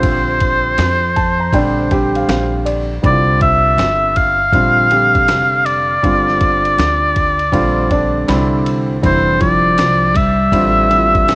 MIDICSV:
0, 0, Header, 1, 6, 480
1, 0, Start_track
1, 0, Tempo, 750000
1, 22, Time_signature, 4, 2, 24, 8
1, 7264, End_track
2, 0, Start_track
2, 0, Title_t, "Oboe"
2, 0, Program_c, 0, 68
2, 0, Note_on_c, 0, 72, 90
2, 1713, Note_off_c, 0, 72, 0
2, 1957, Note_on_c, 0, 74, 110
2, 2173, Note_off_c, 0, 74, 0
2, 2190, Note_on_c, 0, 76, 109
2, 2669, Note_on_c, 0, 77, 116
2, 2679, Note_off_c, 0, 76, 0
2, 3622, Note_on_c, 0, 74, 97
2, 3631, Note_off_c, 0, 77, 0
2, 5542, Note_off_c, 0, 74, 0
2, 5796, Note_on_c, 0, 72, 97
2, 6013, Note_off_c, 0, 72, 0
2, 6025, Note_on_c, 0, 74, 102
2, 6507, Note_on_c, 0, 76, 102
2, 6516, Note_off_c, 0, 74, 0
2, 7264, Note_off_c, 0, 76, 0
2, 7264, End_track
3, 0, Start_track
3, 0, Title_t, "Grand piano"
3, 0, Program_c, 1, 0
3, 0, Note_on_c, 1, 50, 72
3, 0, Note_on_c, 1, 55, 69
3, 0, Note_on_c, 1, 60, 72
3, 0, Note_on_c, 1, 65, 83
3, 627, Note_off_c, 1, 50, 0
3, 629, Note_off_c, 1, 55, 0
3, 632, Note_off_c, 1, 60, 0
3, 634, Note_off_c, 1, 65, 0
3, 745, Note_on_c, 1, 81, 73
3, 886, Note_off_c, 1, 81, 0
3, 896, Note_on_c, 1, 82, 59
3, 976, Note_off_c, 1, 82, 0
3, 978, Note_on_c, 1, 50, 80
3, 984, Note_on_c, 1, 55, 78
3, 986, Note_on_c, 1, 79, 70
3, 989, Note_on_c, 1, 60, 69
3, 991, Note_on_c, 1, 62, 90
3, 1195, Note_off_c, 1, 50, 0
3, 1198, Note_off_c, 1, 55, 0
3, 1200, Note_off_c, 1, 60, 0
3, 1201, Note_off_c, 1, 62, 0
3, 1207, Note_off_c, 1, 79, 0
3, 1216, Note_on_c, 1, 50, 70
3, 1222, Note_on_c, 1, 55, 63
3, 1225, Note_on_c, 1, 79, 68
3, 1226, Note_on_c, 1, 60, 58
3, 1228, Note_on_c, 1, 67, 84
3, 1366, Note_off_c, 1, 79, 0
3, 1381, Note_on_c, 1, 77, 66
3, 1451, Note_off_c, 1, 77, 0
3, 1461, Note_on_c, 1, 77, 73
3, 1685, Note_off_c, 1, 77, 0
3, 1699, Note_on_c, 1, 74, 69
3, 1863, Note_off_c, 1, 50, 0
3, 1866, Note_off_c, 1, 55, 0
3, 1868, Note_off_c, 1, 60, 0
3, 1869, Note_off_c, 1, 67, 0
3, 1924, Note_off_c, 1, 74, 0
3, 1932, Note_on_c, 1, 50, 63
3, 1937, Note_on_c, 1, 55, 67
3, 1941, Note_on_c, 1, 60, 63
3, 1946, Note_on_c, 1, 64, 60
3, 1988, Note_on_c, 1, 65, 67
3, 1997, Note_off_c, 1, 64, 0
3, 2784, Note_off_c, 1, 50, 0
3, 2787, Note_off_c, 1, 55, 0
3, 2789, Note_off_c, 1, 60, 0
3, 2812, Note_off_c, 1, 65, 0
3, 2895, Note_on_c, 1, 50, 64
3, 2899, Note_on_c, 1, 55, 65
3, 2904, Note_on_c, 1, 60, 69
3, 2908, Note_on_c, 1, 65, 78
3, 3113, Note_off_c, 1, 50, 0
3, 3115, Note_off_c, 1, 55, 0
3, 3117, Note_off_c, 1, 60, 0
3, 3120, Note_off_c, 1, 65, 0
3, 3134, Note_on_c, 1, 50, 59
3, 3139, Note_on_c, 1, 55, 52
3, 3141, Note_on_c, 1, 60, 56
3, 3147, Note_on_c, 1, 67, 62
3, 3782, Note_off_c, 1, 50, 0
3, 3784, Note_off_c, 1, 55, 0
3, 3785, Note_off_c, 1, 60, 0
3, 3788, Note_off_c, 1, 67, 0
3, 3856, Note_on_c, 1, 50, 76
3, 3859, Note_on_c, 1, 55, 63
3, 3862, Note_on_c, 1, 60, 55
3, 3868, Note_on_c, 1, 65, 81
3, 4706, Note_off_c, 1, 50, 0
3, 4707, Note_off_c, 1, 55, 0
3, 4709, Note_off_c, 1, 60, 0
3, 4712, Note_off_c, 1, 65, 0
3, 4812, Note_on_c, 1, 50, 87
3, 4816, Note_on_c, 1, 55, 78
3, 4819, Note_on_c, 1, 60, 83
3, 4824, Note_on_c, 1, 65, 97
3, 5032, Note_off_c, 1, 50, 0
3, 5034, Note_off_c, 1, 55, 0
3, 5035, Note_off_c, 1, 60, 0
3, 5038, Note_off_c, 1, 65, 0
3, 5052, Note_on_c, 1, 50, 69
3, 5055, Note_on_c, 1, 55, 61
3, 5059, Note_on_c, 1, 60, 68
3, 5065, Note_on_c, 1, 62, 88
3, 5285, Note_off_c, 1, 50, 0
3, 5287, Note_off_c, 1, 55, 0
3, 5295, Note_off_c, 1, 60, 0
3, 5295, Note_on_c, 1, 50, 101
3, 5296, Note_on_c, 1, 55, 80
3, 5304, Note_off_c, 1, 62, 0
3, 5304, Note_on_c, 1, 60, 87
3, 5306, Note_on_c, 1, 64, 97
3, 5728, Note_off_c, 1, 50, 0
3, 5728, Note_off_c, 1, 55, 0
3, 5732, Note_off_c, 1, 60, 0
3, 5733, Note_off_c, 1, 64, 0
3, 5769, Note_on_c, 1, 50, 71
3, 5776, Note_on_c, 1, 55, 65
3, 5780, Note_on_c, 1, 60, 67
3, 5784, Note_on_c, 1, 64, 75
3, 6623, Note_off_c, 1, 50, 0
3, 6626, Note_off_c, 1, 55, 0
3, 6628, Note_off_c, 1, 60, 0
3, 6630, Note_off_c, 1, 64, 0
3, 6735, Note_on_c, 1, 50, 67
3, 6739, Note_on_c, 1, 55, 70
3, 6742, Note_on_c, 1, 60, 62
3, 6749, Note_on_c, 1, 65, 74
3, 6953, Note_off_c, 1, 50, 0
3, 6955, Note_off_c, 1, 55, 0
3, 6957, Note_off_c, 1, 60, 0
3, 6960, Note_off_c, 1, 65, 0
3, 6971, Note_on_c, 1, 50, 57
3, 6977, Note_on_c, 1, 55, 52
3, 6980, Note_on_c, 1, 60, 53
3, 6986, Note_on_c, 1, 64, 54
3, 7026, Note_on_c, 1, 65, 67
3, 7037, Note_off_c, 1, 64, 0
3, 7264, Note_off_c, 1, 50, 0
3, 7264, Note_off_c, 1, 55, 0
3, 7264, Note_off_c, 1, 60, 0
3, 7264, Note_off_c, 1, 65, 0
3, 7264, End_track
4, 0, Start_track
4, 0, Title_t, "Clean electric guitar"
4, 0, Program_c, 2, 27
4, 5782, Note_on_c, 2, 52, 73
4, 6005, Note_off_c, 2, 52, 0
4, 6020, Note_on_c, 2, 53, 90
4, 6492, Note_off_c, 2, 53, 0
4, 6492, Note_on_c, 2, 55, 83
4, 7264, Note_off_c, 2, 55, 0
4, 7264, End_track
5, 0, Start_track
5, 0, Title_t, "Upright bass"
5, 0, Program_c, 3, 32
5, 0, Note_on_c, 3, 34, 85
5, 475, Note_off_c, 3, 34, 0
5, 500, Note_on_c, 3, 41, 98
5, 957, Note_off_c, 3, 41, 0
5, 977, Note_on_c, 3, 34, 100
5, 1435, Note_off_c, 3, 34, 0
5, 1462, Note_on_c, 3, 34, 80
5, 1918, Note_off_c, 3, 34, 0
5, 1943, Note_on_c, 3, 36, 109
5, 2398, Note_off_c, 3, 36, 0
5, 2417, Note_on_c, 3, 31, 93
5, 2875, Note_off_c, 3, 31, 0
5, 2895, Note_on_c, 3, 34, 92
5, 3354, Note_off_c, 3, 34, 0
5, 3380, Note_on_c, 3, 29, 81
5, 3837, Note_off_c, 3, 29, 0
5, 3864, Note_on_c, 3, 31, 94
5, 4319, Note_off_c, 3, 31, 0
5, 4341, Note_on_c, 3, 38, 91
5, 4797, Note_off_c, 3, 38, 0
5, 4816, Note_on_c, 3, 34, 89
5, 5275, Note_off_c, 3, 34, 0
5, 5305, Note_on_c, 3, 36, 81
5, 5759, Note_off_c, 3, 36, 0
5, 5782, Note_on_c, 3, 29, 96
5, 6238, Note_off_c, 3, 29, 0
5, 6268, Note_on_c, 3, 36, 87
5, 6721, Note_off_c, 3, 36, 0
5, 6734, Note_on_c, 3, 33, 96
5, 7193, Note_off_c, 3, 33, 0
5, 7225, Note_on_c, 3, 33, 78
5, 7264, Note_off_c, 3, 33, 0
5, 7264, End_track
6, 0, Start_track
6, 0, Title_t, "Drums"
6, 20, Note_on_c, 9, 51, 77
6, 22, Note_on_c, 9, 36, 100
6, 84, Note_off_c, 9, 51, 0
6, 86, Note_off_c, 9, 36, 0
6, 259, Note_on_c, 9, 51, 57
6, 264, Note_on_c, 9, 36, 92
6, 323, Note_off_c, 9, 51, 0
6, 328, Note_off_c, 9, 36, 0
6, 498, Note_on_c, 9, 44, 49
6, 498, Note_on_c, 9, 51, 67
6, 504, Note_on_c, 9, 38, 94
6, 562, Note_off_c, 9, 44, 0
6, 562, Note_off_c, 9, 51, 0
6, 568, Note_off_c, 9, 38, 0
6, 744, Note_on_c, 9, 51, 53
6, 748, Note_on_c, 9, 36, 88
6, 808, Note_off_c, 9, 51, 0
6, 812, Note_off_c, 9, 36, 0
6, 977, Note_on_c, 9, 36, 92
6, 982, Note_on_c, 9, 51, 68
6, 1041, Note_off_c, 9, 36, 0
6, 1046, Note_off_c, 9, 51, 0
6, 1222, Note_on_c, 9, 51, 50
6, 1224, Note_on_c, 9, 36, 75
6, 1286, Note_off_c, 9, 51, 0
6, 1288, Note_off_c, 9, 36, 0
6, 1377, Note_on_c, 9, 51, 43
6, 1441, Note_off_c, 9, 51, 0
6, 1463, Note_on_c, 9, 44, 50
6, 1463, Note_on_c, 9, 51, 69
6, 1466, Note_on_c, 9, 38, 116
6, 1527, Note_off_c, 9, 44, 0
6, 1527, Note_off_c, 9, 51, 0
6, 1530, Note_off_c, 9, 38, 0
6, 1704, Note_on_c, 9, 51, 65
6, 1768, Note_off_c, 9, 51, 0
6, 1943, Note_on_c, 9, 36, 104
6, 1945, Note_on_c, 9, 51, 68
6, 2007, Note_off_c, 9, 36, 0
6, 2009, Note_off_c, 9, 51, 0
6, 2182, Note_on_c, 9, 51, 57
6, 2185, Note_on_c, 9, 36, 88
6, 2246, Note_off_c, 9, 51, 0
6, 2249, Note_off_c, 9, 36, 0
6, 2421, Note_on_c, 9, 44, 48
6, 2421, Note_on_c, 9, 51, 69
6, 2427, Note_on_c, 9, 38, 109
6, 2485, Note_off_c, 9, 44, 0
6, 2485, Note_off_c, 9, 51, 0
6, 2491, Note_off_c, 9, 38, 0
6, 2662, Note_on_c, 9, 51, 60
6, 2667, Note_on_c, 9, 36, 91
6, 2726, Note_off_c, 9, 51, 0
6, 2731, Note_off_c, 9, 36, 0
6, 2895, Note_on_c, 9, 36, 88
6, 2901, Note_on_c, 9, 51, 67
6, 2959, Note_off_c, 9, 36, 0
6, 2965, Note_off_c, 9, 51, 0
6, 3141, Note_on_c, 9, 51, 53
6, 3205, Note_off_c, 9, 51, 0
6, 3296, Note_on_c, 9, 51, 40
6, 3297, Note_on_c, 9, 36, 86
6, 3360, Note_off_c, 9, 51, 0
6, 3361, Note_off_c, 9, 36, 0
6, 3381, Note_on_c, 9, 44, 49
6, 3381, Note_on_c, 9, 51, 68
6, 3384, Note_on_c, 9, 38, 113
6, 3445, Note_off_c, 9, 44, 0
6, 3445, Note_off_c, 9, 51, 0
6, 3448, Note_off_c, 9, 38, 0
6, 3623, Note_on_c, 9, 51, 63
6, 3687, Note_off_c, 9, 51, 0
6, 3862, Note_on_c, 9, 36, 103
6, 3865, Note_on_c, 9, 51, 62
6, 3926, Note_off_c, 9, 36, 0
6, 3929, Note_off_c, 9, 51, 0
6, 4022, Note_on_c, 9, 38, 31
6, 4086, Note_off_c, 9, 38, 0
6, 4101, Note_on_c, 9, 51, 53
6, 4104, Note_on_c, 9, 36, 98
6, 4165, Note_off_c, 9, 51, 0
6, 4168, Note_off_c, 9, 36, 0
6, 4258, Note_on_c, 9, 51, 42
6, 4322, Note_off_c, 9, 51, 0
6, 4343, Note_on_c, 9, 44, 47
6, 4343, Note_on_c, 9, 51, 65
6, 4350, Note_on_c, 9, 38, 108
6, 4407, Note_off_c, 9, 44, 0
6, 4407, Note_off_c, 9, 51, 0
6, 4414, Note_off_c, 9, 38, 0
6, 4583, Note_on_c, 9, 51, 57
6, 4586, Note_on_c, 9, 36, 86
6, 4647, Note_off_c, 9, 51, 0
6, 4650, Note_off_c, 9, 36, 0
6, 4732, Note_on_c, 9, 51, 34
6, 4796, Note_off_c, 9, 51, 0
6, 4815, Note_on_c, 9, 36, 87
6, 4823, Note_on_c, 9, 51, 64
6, 4879, Note_off_c, 9, 36, 0
6, 4887, Note_off_c, 9, 51, 0
6, 5060, Note_on_c, 9, 51, 50
6, 5062, Note_on_c, 9, 36, 75
6, 5124, Note_off_c, 9, 51, 0
6, 5126, Note_off_c, 9, 36, 0
6, 5301, Note_on_c, 9, 44, 47
6, 5301, Note_on_c, 9, 51, 71
6, 5304, Note_on_c, 9, 38, 113
6, 5365, Note_off_c, 9, 44, 0
6, 5365, Note_off_c, 9, 51, 0
6, 5368, Note_off_c, 9, 38, 0
6, 5544, Note_on_c, 9, 51, 58
6, 5608, Note_off_c, 9, 51, 0
6, 5782, Note_on_c, 9, 36, 98
6, 5783, Note_on_c, 9, 51, 69
6, 5846, Note_off_c, 9, 36, 0
6, 5847, Note_off_c, 9, 51, 0
6, 6021, Note_on_c, 9, 51, 53
6, 6023, Note_on_c, 9, 36, 87
6, 6085, Note_off_c, 9, 51, 0
6, 6087, Note_off_c, 9, 36, 0
6, 6258, Note_on_c, 9, 44, 52
6, 6258, Note_on_c, 9, 51, 71
6, 6264, Note_on_c, 9, 38, 104
6, 6322, Note_off_c, 9, 44, 0
6, 6322, Note_off_c, 9, 51, 0
6, 6328, Note_off_c, 9, 38, 0
6, 6499, Note_on_c, 9, 51, 63
6, 6505, Note_on_c, 9, 36, 84
6, 6563, Note_off_c, 9, 51, 0
6, 6569, Note_off_c, 9, 36, 0
6, 6734, Note_on_c, 9, 36, 91
6, 6739, Note_on_c, 9, 51, 72
6, 6798, Note_off_c, 9, 36, 0
6, 6803, Note_off_c, 9, 51, 0
6, 6982, Note_on_c, 9, 51, 51
6, 7046, Note_off_c, 9, 51, 0
6, 7135, Note_on_c, 9, 36, 97
6, 7136, Note_on_c, 9, 51, 43
6, 7199, Note_off_c, 9, 36, 0
6, 7200, Note_off_c, 9, 51, 0
6, 7222, Note_on_c, 9, 44, 50
6, 7222, Note_on_c, 9, 51, 73
6, 7225, Note_on_c, 9, 38, 109
6, 7264, Note_off_c, 9, 38, 0
6, 7264, Note_off_c, 9, 44, 0
6, 7264, Note_off_c, 9, 51, 0
6, 7264, End_track
0, 0, End_of_file